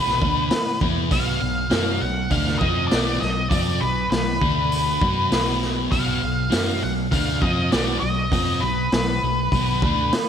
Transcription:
Already playing: fingered electric bass B1, distorted electric guitar B2 F#3 B3, lead electric guitar B4
0.07 snare
0.21 fingered electric bass D2, distorted electric guitar D3 A3 D4, kick
0.51 muted distorted electric guitar stroke, snare, open hi-hat
0.81 fingered electric bass E2, distorted electric guitar E3 B3 E4, kick
1.10 fingered electric bass B1, distorted electric guitar B2 F#3 B3, lead electric guitar F5, kick, open hi-hat
1.41 fingered electric bass B1, distorted electric guitar B2 F#3
1.70 fingered electric bass F#2, distorted electric guitar F#3 C#4 F#4, snare, open hi-hat
2.01 fingered electric bass B1, distorted electric guitar B2 F#3, lead electric guitar F#5
2.31 fingered electric bass D2, distorted electric guitar D3 A3 D4, lead electric guitar F5, kick, open hi-hat
2.47 snare
2.59 fingered electric bass F2, distorted electric guitar F3 C4, lead electric guitar D#5, kick
2.63 distorted electric guitar F4
2.87 lead electric guitar D5, open hi-hat
2.91 fingered electric bass B1, distorted electric guitar B2 F#3 B3, snare
3.20 fingered electric bass B1, distorted electric guitar B2 F#3, lead electric guitar D#5, snare
3.50 fingered electric bass F2, distorted electric guitar F3 C4 F4, lead electric guitar D5, kick, open hi-hat
3.80 fingered electric bass B1, distorted electric guitar B2 F#3, lead electric guitar B4
4.11 fingered electric bass B1, distorted electric guitar B2 F#3, lead electric guitar B4, snare, open hi-hat
4.42 fingered electric bass D2, distorted electric guitar D3 A3 D4, kick
4.72 open hi-hat
5.01 fingered electric bass F#2, distorted electric guitar F#3 C#4 F#4, kick
5.31 fingered electric bass B1, distorted electric guitar B2 F#3 B3, snare, open hi-hat
5.62 snare
5.91 fingered electric bass B1, distorted electric guitar B2 F#3 B3, lead electric guitar F5, kick, open hi-hat
6.22 fingered electric bass B1, distorted electric guitar B2 F#3
6.50 fingered electric bass F#2, distorted electric guitar F#3 C#4 F#4, snare, open hi-hat
6.82 fingered electric bass B1, distorted electric guitar B2 F#3, lead electric guitar F#5
7.11 fingered electric bass D2, distorted electric guitar D3 A3 D4, lead electric guitar F5, kick, open hi-hat
7.42 fingered electric bass F2, distorted electric guitar F3 C4 F4, lead electric guitar D#5, kick
7.71 fingered electric bass B1, distorted electric guitar B2 F#3 B3, lead electric guitar D5, snare, open hi-hat
8.00 fingered electric bass B1, distorted electric guitar B2 F#3, lead electric guitar D#5
8.32 fingered electric bass F2, distorted electric guitar F3 C4 F4, kick, open hi-hat
8.61 fingered electric bass B1, distorted electric guitar B2 F#3, lead electric guitar B4
8.92 fingered electric bass B1, distorted electric guitar B2 F#3, lead electric guitar B4, snare, open hi-hat
9.23 fingered electric bass B1, distorted electric guitar B2 F#3
9.52 fingered electric bass B1, distorted electric guitar B2 F#3 B3, kick, open hi-hat
9.82 fingered electric bass D2, distorted electric guitar D3 A3 D4, kick
10.12 muted distorted electric guitar stroke, snare, open hi-hat

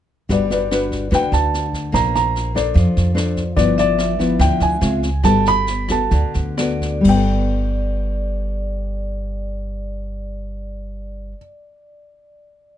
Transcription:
0.29 upright bass G1, nylon-string guitar G3 D4 F#4 B4, grand piano D5, kick, snare
0.50 nylon-string guitar D4 F#4 B4, grand piano D5, snare
0.71 nylon-string guitar D4 F#4 B4, cross-stick, snare
0.91 kick, snare
1.11 upright bass D2, nylon-string guitar D3 D4 F#4 B4, grand piano G5, kick, cross-stick, snare
1.32 upright bass D2, grand piano A5, snare
1.54 snare
1.73 kick, snare
1.92 upright bass A#1, nylon-string guitar A#3 D4 C5, grand piano A#5, kick, cross-stick, snare
2.15 grand piano A#5, snare
2.36 snare
2.55 nylon-string guitar D4 A4 C5, grand piano D5, kick, cross-stick, snare
2.74 upright bass F2, nylon-string guitar F3, kick, snare
2.97 upright bass F2, snare
3.14 nylon-string guitar D4 A4 C5, cross-stick, snare
3.37 kick, snare
3.56 upright bass G1, nylon-string guitar G2 F3 B3 E4, grand piano D5, kick, snare
3.78 grand piano D5, vibraphone E5, snare
3.98 cross-stick, snare
4.19 nylon-string guitar F3 B3 E4, kick, snare
4.39 upright bass D2, nylon-string guitar D3, grand piano G5, kick, cross-stick, snare
4.60 upright bass D2, grand piano G#5, snare
4.81 upright bass C#2, nylon-string guitar G#3 C4 F4, snare
5.02 kick, snare
5.23 upright bass G1, nylon-string guitar G3 B3 F#4 A4, grand piano A5, kick, cross-stick, snare
5.45 grand piano B5, snare
5.67 snare
5.88 nylon-string guitar B3 F#4 A4, grand piano A5, kick, cross-stick, snare
6.11 upright bass D2, nylon-string guitar D3, kick, snare
6.34 upright bass D2, snare
6.58 nylon-string guitar B3 F#4 A4, vibraphone D5, cross-stick, snare
6.81 kick, snare
7.01 nylon-string guitar G3, vibraphone D5, crash
7.05 upright bass G1, nylon-string guitar B3, grand piano G5, kick
7.16 nylon-string guitar A4

